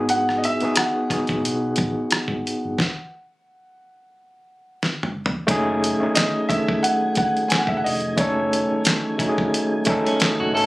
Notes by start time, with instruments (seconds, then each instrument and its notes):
Already playing: fingered electric bass G#1, tine electric piano B3 D#4 F#4 G#4
0.09 grand piano F#5, closed hi-hat
0.29 cross-stick
0.38 grand piano D#5
0.44 grand piano E5, closed hi-hat
0.60 tine electric piano B3 D#4 F#4, muted fingered electric bass stroke, closed hi-hat
0.65 tine electric piano G#4
0.76 grand piano F#5, cross-stick, closed hi-hat
1.10 tine electric piano B3 D#4 F#4 G#4, muted fingered electric bass stroke, kick, cross-stick, closed hi-hat
1.27 fingered electric bass G#1, kick, closed hi-hat
1.45 fingered electric bass B1, closed hi-hat
1.76 fingered electric bass A1, kick, closed hi-hat
2.11 muted fingered electric bass stroke, cross-stick, closed hi-hat
2.28 fingered electric bass G#1, kick
2.47 closed hi-hat
2.65 fingered electric bass G1
2.79 kick, snare
4.83 snare
5.03 mid tom
5.26 floor tom
5.47 fingered electric bass F#1, tonewheel organ D#3 F#3 A3 G#5, tine electric piano A3 C#4 D#4 G#4, kick, closed hi-hat
5.84 closed hi-hat
6.00 tine electric piano A3 C#4 D#4, muted fingered electric bass stroke
6.04 tine electric piano G#4
6.15 grand piano D#5, snare, clap, closed hi-hat
6.49 tine electric piano D#3 A3 C#4, grand piano E5, kick, closed hi-hat
6.53 tine electric piano G#4
6.59 tine electric piano A4
6.69 kick
6.83 grand piano F#5, closed hi-hat
7.15 grand piano F#5, kick, closed hi-hat
7.37 closed hi-hat
7.48 grand piano G#5, snare, closed hi-hat
7.53 clap
7.58 grand piano F#5
7.67 fingered electric bass F#1, grand piano E5, kick
7.77 grand piano F#5
7.84 fingered electric bass F1, grand piano D#5, open hi-hat
8.01 closed hi-hat
8.17 fingered electric bass F#1, tine electric piano A3 C#4 D#4, grand piano C#5, kick, closed hi-hat
8.21 tine electric piano A4
8.53 closed hi-hat
8.72 muted fingered electric bass stroke
8.85 snare, clap, closed hi-hat
9.18 tine electric piano A3 C#4 D#4 F#4, kick, closed hi-hat
9.29 tine electric piano G#4
9.38 kick
9.54 closed hi-hat
9.85 tine electric piano A3 C#4 D#4, kick, closed hi-hat
9.90 tine electric piano A4
10.06 clean electric guitar C#4, closed hi-hat
10.20 clean electric guitar D#4, snare, clap, closed hi-hat
10.40 fingered electric bass F#1, clean electric guitar F#4
10.53 fingered electric bass G#1, tine electric piano A3 C#4 D#4 A4, clean electric guitar A4, open hi-hat